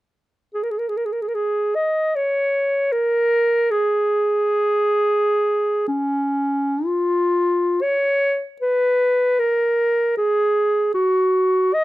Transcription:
0, 0, Header, 1, 2, 480
1, 0, Start_track
1, 0, Key_signature, -5, "major"
1, 0, Tempo, 834492
1, 308, Time_signature, 3, 2, 24, 8
1, 785, Tempo, 775194
1, 2225, Tempo, 841515
1, 2705, Tempo, 1342282
1, 3185, Tempo, 970874
1, 4145, Tempo, 808625
1, 4625, Tempo, 777202
1, 6613, End_track
2, 0, Start_track
2, 0, Title_t, "Clarinet"
2, 0, Program_c, 0, 71
2, 313, Note_on_c, 0, 68, 38
2, 364, Note_on_c, 0, 70, 41
2, 372, Note_off_c, 0, 68, 0
2, 408, Note_on_c, 0, 68, 38
2, 416, Note_off_c, 0, 70, 0
2, 453, Note_on_c, 0, 70, 40
2, 461, Note_off_c, 0, 68, 0
2, 510, Note_on_c, 0, 68, 41
2, 519, Note_off_c, 0, 70, 0
2, 557, Note_on_c, 0, 70, 44
2, 566, Note_off_c, 0, 68, 0
2, 607, Note_on_c, 0, 68, 39
2, 616, Note_off_c, 0, 70, 0
2, 647, Note_on_c, 0, 70, 40
2, 656, Note_off_c, 0, 68, 0
2, 700, Note_on_c, 0, 68, 41
2, 708, Note_off_c, 0, 70, 0
2, 737, Note_on_c, 0, 70, 39
2, 746, Note_off_c, 0, 68, 0
2, 775, Note_on_c, 0, 68, 50
2, 784, Note_off_c, 0, 70, 0
2, 1026, Note_on_c, 0, 75, 48
2, 1036, Note_off_c, 0, 68, 0
2, 1276, Note_on_c, 0, 73, 50
2, 1285, Note_off_c, 0, 75, 0
2, 1749, Note_on_c, 0, 70, 68
2, 1758, Note_off_c, 0, 73, 0
2, 2235, Note_on_c, 0, 68, 56
2, 2244, Note_off_c, 0, 70, 0
2, 3185, Note_off_c, 0, 68, 0
2, 3188, Note_on_c, 0, 61, 43
2, 3669, Note_on_c, 0, 65, 50
2, 3677, Note_off_c, 0, 61, 0
2, 4150, Note_on_c, 0, 73, 54
2, 4159, Note_off_c, 0, 65, 0
2, 4517, Note_off_c, 0, 73, 0
2, 4618, Note_on_c, 0, 71, 56
2, 5101, Note_on_c, 0, 70, 57
2, 5110, Note_off_c, 0, 71, 0
2, 5577, Note_off_c, 0, 70, 0
2, 5581, Note_on_c, 0, 68, 55
2, 6045, Note_off_c, 0, 68, 0
2, 6056, Note_on_c, 0, 66, 57
2, 6548, Note_on_c, 0, 75, 68
2, 6557, Note_off_c, 0, 66, 0
2, 6613, Note_off_c, 0, 75, 0
2, 6613, End_track
0, 0, End_of_file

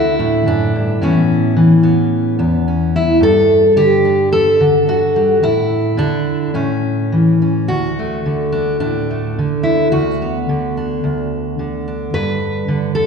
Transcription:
0, 0, Header, 1, 2, 480
1, 0, Start_track
1, 0, Key_signature, 2, "major"
1, 0, Tempo, 552995
1, 876, Time_signature, 4, 2, 24, 8
1, 5195, Tempo, 564972
1, 8555, Tempo, 548446
1, 11290, End_track
2, 0, Start_track
2, 0, Title_t, "Steel-string acoustic guitar"
2, 0, Program_c, 0, 25
2, 0, Note_on_c, 0, 38, 71
2, 0, Note_on_c, 0, 50, 46
2, 0, Note_on_c, 0, 64, 85
2, 0, Note_on_c, 0, 66, 89
2, 166, Note_off_c, 0, 66, 0
2, 166, Note_on_c, 0, 45, 62
2, 170, Note_on_c, 0, 62, 45
2, 396, Note_off_c, 0, 38, 0
2, 400, Note_on_c, 0, 42, 60
2, 404, Note_off_c, 0, 62, 0
2, 413, Note_on_c, 0, 62, 82
2, 639, Note_off_c, 0, 42, 0
2, 658, Note_on_c, 0, 43, 61
2, 871, Note_off_c, 0, 45, 0
2, 880, Note_off_c, 0, 50, 0
2, 881, Note_on_c, 0, 45, 73
2, 883, Note_off_c, 0, 62, 0
2, 886, Note_off_c, 0, 43, 0
2, 888, Note_off_c, 0, 64, 0
2, 888, Note_on_c, 0, 52, 50
2, 892, Note_on_c, 0, 61, 78
2, 896, Note_on_c, 0, 59, 47
2, 1347, Note_off_c, 0, 52, 0
2, 1358, Note_on_c, 0, 52, 68
2, 1579, Note_off_c, 0, 59, 0
2, 1590, Note_on_c, 0, 59, 48
2, 2064, Note_off_c, 0, 59, 0
2, 2073, Note_off_c, 0, 45, 0
2, 2073, Note_on_c, 0, 40, 64
2, 2076, Note_on_c, 0, 59, 49
2, 2315, Note_off_c, 0, 61, 0
2, 2325, Note_on_c, 0, 61, 47
2, 2568, Note_on_c, 0, 64, 90
2, 2763, Note_off_c, 0, 40, 0
2, 2763, Note_off_c, 0, 59, 0
2, 2764, Note_off_c, 0, 52, 0
2, 2768, Note_off_c, 0, 61, 0
2, 2782, Note_on_c, 0, 43, 74
2, 2798, Note_off_c, 0, 64, 0
2, 2804, Note_on_c, 0, 69, 107
2, 3266, Note_on_c, 0, 50, 66
2, 3269, Note_off_c, 0, 69, 0
2, 3272, Note_on_c, 0, 67, 107
2, 3515, Note_on_c, 0, 62, 47
2, 3750, Note_off_c, 0, 67, 0
2, 3754, Note_on_c, 0, 69, 101
2, 3987, Note_off_c, 0, 50, 0
2, 3997, Note_on_c, 0, 50, 67
2, 4237, Note_off_c, 0, 62, 0
2, 4242, Note_on_c, 0, 66, 93
2, 4479, Note_on_c, 0, 55, 46
2, 4682, Note_off_c, 0, 43, 0
2, 4688, Note_off_c, 0, 50, 0
2, 4711, Note_on_c, 0, 45, 73
2, 4714, Note_off_c, 0, 69, 0
2, 4717, Note_off_c, 0, 55, 0
2, 4717, Note_on_c, 0, 64, 101
2, 4719, Note_off_c, 0, 66, 0
2, 5185, Note_on_c, 0, 50, 66
2, 5193, Note_off_c, 0, 45, 0
2, 5195, Note_on_c, 0, 62, 87
2, 5667, Note_on_c, 0, 45, 72
2, 5669, Note_off_c, 0, 50, 0
2, 5669, Note_off_c, 0, 62, 0
2, 5673, Note_on_c, 0, 61, 70
2, 5674, Note_off_c, 0, 64, 0
2, 6162, Note_on_c, 0, 52, 59
2, 6402, Note_off_c, 0, 61, 0
2, 6412, Note_on_c, 0, 61, 43
2, 6621, Note_off_c, 0, 52, 0
2, 6624, Note_off_c, 0, 61, 0
2, 6638, Note_on_c, 0, 66, 86
2, 6644, Note_on_c, 0, 38, 62
2, 6648, Note_off_c, 0, 45, 0
2, 6898, Note_on_c, 0, 57, 37
2, 7124, Note_on_c, 0, 50, 56
2, 7352, Note_on_c, 0, 62, 73
2, 7577, Note_off_c, 0, 62, 0
2, 7587, Note_on_c, 0, 62, 75
2, 7594, Note_on_c, 0, 45, 54
2, 7835, Note_off_c, 0, 57, 0
2, 7840, Note_off_c, 0, 66, 0
2, 7846, Note_on_c, 0, 57, 42
2, 8074, Note_off_c, 0, 50, 0
2, 8076, Note_off_c, 0, 45, 0
2, 8084, Note_on_c, 0, 50, 55
2, 8295, Note_on_c, 0, 64, 76
2, 8528, Note_off_c, 0, 57, 0
2, 8533, Note_off_c, 0, 64, 0
2, 8537, Note_on_c, 0, 66, 80
2, 8538, Note_off_c, 0, 38, 0
2, 8545, Note_off_c, 0, 62, 0
2, 8548, Note_on_c, 0, 38, 64
2, 8799, Note_on_c, 0, 59, 39
2, 9027, Note_off_c, 0, 50, 0
2, 9037, Note_on_c, 0, 50, 59
2, 9283, Note_on_c, 0, 62, 46
2, 9505, Note_off_c, 0, 38, 0
2, 9515, Note_on_c, 0, 38, 59
2, 9990, Note_off_c, 0, 50, 0
2, 9995, Note_off_c, 0, 66, 0
2, 10001, Note_on_c, 0, 50, 56
2, 10246, Note_off_c, 0, 62, 0
2, 10250, Note_on_c, 0, 62, 43
2, 10454, Note_off_c, 0, 59, 0
2, 10474, Note_off_c, 0, 38, 0
2, 10477, Note_on_c, 0, 43, 67
2, 10480, Note_on_c, 0, 71, 102
2, 10945, Note_off_c, 0, 50, 0
2, 10955, Note_on_c, 0, 50, 61
2, 11185, Note_off_c, 0, 71, 0
2, 11189, Note_on_c, 0, 69, 92
2, 11290, Note_off_c, 0, 43, 0
2, 11290, Note_off_c, 0, 50, 0
2, 11290, Note_off_c, 0, 62, 0
2, 11290, Note_off_c, 0, 69, 0
2, 11290, End_track
0, 0, End_of_file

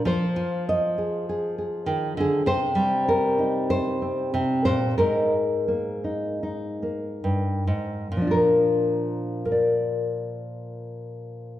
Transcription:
0, 0, Header, 1, 2, 480
1, 0, Start_track
1, 0, Tempo, 606673
1, 40, Time_signature, 4, 2, 24, 8
1, 2919, Tempo, 645856
1, 3879, Tempo, 688863
1, 4359, Tempo, 746269
1, 4839, Tempo, 816327
1, 5319, Tempo, 882353
1, 7693, End_track
2, 0, Start_track
2, 0, Title_t, "Nylon-string guitar"
2, 0, Program_c, 0, 24
2, 42, Note_on_c, 0, 53, 68
2, 54, Note_on_c, 0, 72, 101
2, 286, Note_on_c, 0, 65, 61
2, 534, Note_off_c, 0, 72, 0
2, 544, Note_on_c, 0, 75, 91
2, 775, Note_on_c, 0, 68, 48
2, 1013, Note_off_c, 0, 68, 0
2, 1023, Note_on_c, 0, 68, 57
2, 1243, Note_off_c, 0, 68, 0
2, 1253, Note_on_c, 0, 68, 45
2, 1474, Note_on_c, 0, 51, 63
2, 1715, Note_off_c, 0, 51, 0
2, 1718, Note_on_c, 0, 50, 56
2, 1723, Note_off_c, 0, 68, 0
2, 1743, Note_on_c, 0, 68, 86
2, 1931, Note_off_c, 0, 65, 0
2, 1945, Note_off_c, 0, 50, 0
2, 1948, Note_on_c, 0, 48, 63
2, 1951, Note_off_c, 0, 75, 0
2, 1954, Note_on_c, 0, 72, 110
2, 1958, Note_off_c, 0, 53, 0
2, 1968, Note_off_c, 0, 68, 0
2, 2177, Note_on_c, 0, 55, 63
2, 2430, Note_off_c, 0, 72, 0
2, 2440, Note_on_c, 0, 70, 89
2, 2678, Note_on_c, 0, 63, 47
2, 2923, Note_off_c, 0, 70, 0
2, 2928, Note_on_c, 0, 72, 111
2, 3164, Note_on_c, 0, 60, 44
2, 3387, Note_off_c, 0, 48, 0
2, 3400, Note_on_c, 0, 48, 71
2, 3624, Note_off_c, 0, 72, 0
2, 3633, Note_on_c, 0, 72, 105
2, 3637, Note_off_c, 0, 48, 0
2, 3640, Note_on_c, 0, 46, 59
2, 3842, Note_off_c, 0, 55, 0
2, 3852, Note_off_c, 0, 63, 0
2, 3855, Note_off_c, 0, 60, 0
2, 3873, Note_off_c, 0, 72, 0
2, 3876, Note_on_c, 0, 70, 88
2, 3881, Note_off_c, 0, 46, 0
2, 3883, Note_on_c, 0, 44, 61
2, 3886, Note_on_c, 0, 56, 45
2, 3891, Note_on_c, 0, 58, 46
2, 3895, Note_on_c, 0, 63, 44
2, 4120, Note_off_c, 0, 56, 0
2, 4358, Note_off_c, 0, 58, 0
2, 4365, Note_on_c, 0, 58, 46
2, 4591, Note_off_c, 0, 63, 0
2, 4598, Note_on_c, 0, 63, 43
2, 4839, Note_off_c, 0, 63, 0
2, 4847, Note_on_c, 0, 63, 51
2, 5072, Note_off_c, 0, 58, 0
2, 5079, Note_on_c, 0, 58, 43
2, 5320, Note_off_c, 0, 44, 0
2, 5322, Note_on_c, 0, 43, 54
2, 5556, Note_off_c, 0, 43, 0
2, 5559, Note_on_c, 0, 44, 52
2, 5771, Note_off_c, 0, 63, 0
2, 5795, Note_off_c, 0, 70, 0
2, 5798, Note_off_c, 0, 44, 0
2, 5800, Note_on_c, 0, 46, 55
2, 5828, Note_on_c, 0, 53, 53
2, 5852, Note_off_c, 0, 58, 0
2, 5854, Note_on_c, 0, 62, 52
2, 5883, Note_on_c, 0, 65, 46
2, 5905, Note_on_c, 0, 70, 78
2, 6521, Note_off_c, 0, 70, 0
2, 6525, Note_off_c, 0, 62, 0
2, 6527, Note_on_c, 0, 70, 70
2, 6559, Note_off_c, 0, 65, 0
2, 6561, Note_on_c, 0, 74, 58
2, 7693, Note_off_c, 0, 46, 0
2, 7693, Note_off_c, 0, 53, 0
2, 7693, Note_off_c, 0, 70, 0
2, 7693, Note_off_c, 0, 74, 0
2, 7693, End_track
0, 0, End_of_file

